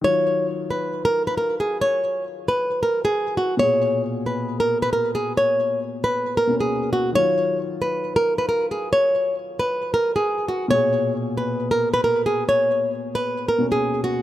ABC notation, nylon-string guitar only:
X:1
M:4/4
L:1/16
Q:1/4=135
K:Ebm
V:1 name="Nylon-string guitar"
d4 z2 c3 B2 c B2 A2 | d4 z2 c3 B2 A3 G2 | d4 z2 c3 B2 c B2 A2 | d4 z2 c3 B2 A3 G2 |
d4 z2 c3 B2 c B2 A2 | d4 z2 c3 B2 A3 G2 | d4 z2 c3 B2 c B2 A2 | d4 z2 c3 B2 A3 G2 |]